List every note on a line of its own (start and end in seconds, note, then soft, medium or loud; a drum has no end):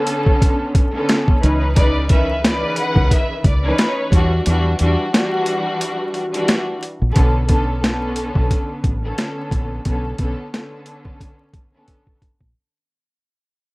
0.00 0.82 D3 loud
0.00 0.83 B3 loud
0.00 0.83 C#4 loud
0.00 0.84 A4 loud
0.07 closed hi-hat medium
0.26 kick medium
0.42 kick loud
0.42 closed hi-hat loud
0.75 kick loud
0.75 closed hi-hat medium
0.93 1.39 D3 loud
0.93 1.39 B3 medium
0.93 1.40 C#4 medium
0.93 1.40 A4 loud
1.09 snare loud
1.09 closed hi-hat medium
1.28 kick loud
1.40 2.63 C#2 loud
1.40 1.73 E3 loud
1.40 1.73 C#4 loud
1.40 1.74 D#4 loud
1.40 1.74 B4 loud
1.40 closed hi-hat medium
1.75 2.08 C#3 medium
1.75 2.07 E3 loud
1.75 2.08 D#4 loud
1.75 2.08 B4 loud
1.75 2.07 D5 loud
1.75 kick loud
1.75 closed hi-hat medium
2.09 2.42 D#3 medium
2.09 2.40 E3 medium
2.09 2.42 C#4 medium
2.09 2.42 B4 loud
2.09 2.41 E5 medium
2.09 kick loud
2.09 closed hi-hat medium
2.41 3.52 C#3 medium
2.41 3.53 D#3 loud
2.41 3.52 E3 loud
2.41 3.53 B4 loud
2.41 snare loud
2.41 closed hi-hat medium
2.46 2.76 D5 medium
2.77 3.09 F#5 medium
2.77 closed hi-hat medium
2.96 3.08 C#2 medium
2.96 kick loud
3.11 3.43 E5 medium
3.11 kick loud
3.11 closed hi-hat loud
3.44 3.71 C#2 medium
3.44 3.76 D5 medium
3.44 kick loud
3.44 closed hi-hat medium
3.64 4.09 E3 loud
3.64 4.13 C#4 medium
3.64 4.14 D#4 medium
3.64 4.14 B4 loud
3.78 4.10 C#5 medium
3.78 snare loud
3.78 closed hi-hat medium
4.10 4.39 E2 loud
4.10 4.43 E3 loud
4.10 4.43 G3 loud
4.10 4.44 D4 medium
4.10 4.44 F#4 loud
4.10 kick medium
4.10 closed hi-hat medium
4.46 4.73 E2 loud
4.46 4.77 E3 loud
4.46 4.78 G3 loud
4.46 4.78 D4 loud
4.46 4.78 F#4 loud
4.46 closed hi-hat medium
4.78 4.95 E2 medium
4.78 5.10 E3 loud
4.78 5.11 G3 medium
4.78 5.11 D4 loud
4.78 5.12 F#4 loud
4.78 closed hi-hat medium
5.11 6.22 E3 loud
5.11 6.22 G3 loud
5.11 6.23 D4 medium
5.11 6.23 F#4 loud
5.11 snare loud
5.11 closed hi-hat medium
5.46 closed hi-hat medium
5.81 closed hi-hat loud
6.14 closed hi-hat medium
6.32 6.78 E3 loud
6.32 6.78 G3 medium
6.32 6.79 D4 medium
6.32 6.79 F#4 loud
6.32 closed hi-hat medium
6.48 snare loud
6.48 closed hi-hat medium
6.83 closed hi-hat medium
7.01 7.13 A#1 medium
7.13 8.32 B1 loud
7.13 7.46 D3 loud
7.13 7.46 B3 medium
7.13 7.46 C#4 medium
7.13 7.47 A4 loud
7.13 kick loud
7.13 closed hi-hat medium
7.47 7.80 D3 medium
7.47 7.80 B3 medium
7.47 7.80 C#4 medium
7.47 7.81 A4 loud
7.47 kick medium
7.47 closed hi-hat medium
7.81 8.92 D3 loud
7.81 8.92 B3 loud
7.81 8.92 C#4 medium
7.81 8.93 A4 loud
7.81 snare loud
7.81 closed hi-hat medium
8.16 closed hi-hat medium
8.35 8.47 B1 medium
8.35 kick medium
8.51 kick medium
8.51 closed hi-hat loud
8.84 9.11 A1 medium
8.84 kick medium
8.84 closed hi-hat medium
9.03 9.79 D3 medium
9.03 9.80 B3 medium
9.03 9.80 C#4 medium
9.03 9.81 A4 loud
9.18 snare loud
9.18 closed hi-hat medium
9.51 9.78 A#1 medium
9.51 kick medium
9.51 closed hi-hat medium
9.85 10.12 B1 loud
9.85 10.17 D3 medium
9.85 10.17 B3 medium
9.85 10.17 C#4 medium
9.85 10.18 A4 loud
9.85 kick loud
9.85 closed hi-hat medium
10.18 10.34 B1 medium
10.18 10.50 D3 medium
10.18 10.50 B3 medium
10.18 10.51 C#4 medium
10.18 10.51 A4 loud
10.18 kick medium
10.18 closed hi-hat medium
10.53 11.62 D3 loud
10.53 11.63 B3 medium
10.53 11.63 C#4 medium
10.53 11.64 A4 loud
10.53 snare loud
10.53 closed hi-hat medium
10.86 closed hi-hat medium
11.05 kick medium
11.21 kick medium
11.21 closed hi-hat loud
11.54 kick medium
11.54 closed hi-hat medium
11.74 12.19 D3 medium
11.74 12.19 B3 medium
11.74 12.19 C#4 medium
11.74 12.20 A4 loud
11.88 kick medium
11.88 closed hi-hat medium
12.07 kick medium
12.22 kick medium
12.22 closed hi-hat medium
12.41 12.52 A#1 medium
12.41 kick medium